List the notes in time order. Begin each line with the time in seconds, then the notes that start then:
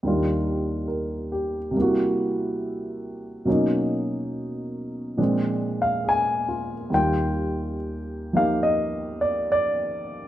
0.03 D#2 D#3 G3 D4
0.08 F4
0.88 A#4
1.32 G4
1.71 C3 G3
1.77 A#3 E4
1.82 F#4
3.45 B2 F#3 A#3 C#4
3.49 D#4
5.17 A#2 F3 G#3 C4 D4
5.82 F5
6.05 G#4
6.09 G#5
6.49 F4
6.90 D#2 D#3 G3
6.94 F4 G5
8.33 F3 A#3 D#4 G4 F5
8.63 D#5
9.21 D5
9.52 D5